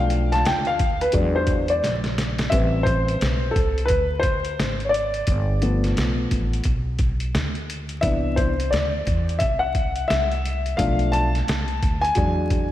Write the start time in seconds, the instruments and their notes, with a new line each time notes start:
Already playing: upright bass B1, grand piano F3 A3 D4 F5
0.10 closed hi-hat
0.32 grand piano A5, snare, closed hi-hat
0.45 upright bass D2, grand piano G5, snare, closed hi-hat
0.65 grand piano F5, closed hi-hat
0.79 kick, closed hi-hat
1.01 grand piano B4, closed hi-hat
1.12 upright bass E2, grand piano F#3 G#3 D4, kick, closed hi-hat
1.35 grand piano C5
1.47 kick, closed hi-hat
1.68 grand piano D5, closed hi-hat
1.83 upright bass A#1, snare, closed hi-hat
2.04 snare, closed hi-hat
2.18 snare, closed hi-hat
2.39 snare, closed hi-hat
2.50 upright bass A1, grand piano G3 C4 B4 E5, kick, closed hi-hat
2.83 grand piano C5, kick, closed hi-hat
3.08 closed hi-hat
3.21 upright bass B1, snare, closed hi-hat
3.51 grand piano A4
3.56 upright bass C2, kick, closed hi-hat
3.78 closed hi-hat
3.85 grand piano B4, closed hi-hat
3.90 upright bass D2, kick
4.20 grand piano C5, kick, closed hi-hat
4.45 closed hi-hat
4.59 upright bass G#1, snare, closed hi-hat
4.80 closed hi-hat
4.85 grand piano C#5
4.89 grand piano D5
4.94 closed hi-hat
5.14 closed hi-hat
5.27 upright bass G1, kick, closed hi-hat
5.61 grand piano F3 A3 B3, closed hi-hat
5.84 snare, closed hi-hat
5.97 upright bass B1, snare, closed hi-hat
6.31 upright bass A1, kick, closed hi-hat
6.53 closed hi-hat
6.64 upright bass B1, kick, closed hi-hat
6.99 kick, closed hi-hat
7.20 closed hi-hat
7.35 upright bass D2, snare, closed hi-hat
7.55 closed hi-hat
7.70 closed hi-hat
7.89 closed hi-hat
8.01 upright bass C2, grand piano E3 B3 D4 E5, kick, closed hi-hat
8.36 grand piano C5, kick, closed hi-hat
8.60 closed hi-hat
8.71 upright bass D2, grand piano D5, snare, closed hi-hat
9.07 upright bass E2, kick, closed hi-hat
9.29 closed hi-hat
9.39 upright bass C2, grand piano E5, kick, closed hi-hat
9.59 grand piano F#5
9.75 kick, closed hi-hat
9.96 closed hi-hat
10.08 upright bass C2, grand piano E5, snare, closed hi-hat
10.32 closed hi-hat
10.45 closed hi-hat
10.66 closed hi-hat
10.77 upright bass B1, grand piano F3 A3 D4 F5, kick, closed hi-hat
10.99 closed hi-hat
11.12 grand piano A5, closed hi-hat
11.35 snare, closed hi-hat
11.48 upright bass C2, snare, closed hi-hat
11.68 closed hi-hat
11.83 upright bass D2, kick, closed hi-hat
12.01 grand piano G#5, closed hi-hat
12.15 upright bass E2, grand piano F#3 G#3 D4, kick, closed hi-hat
12.50 kick, closed hi-hat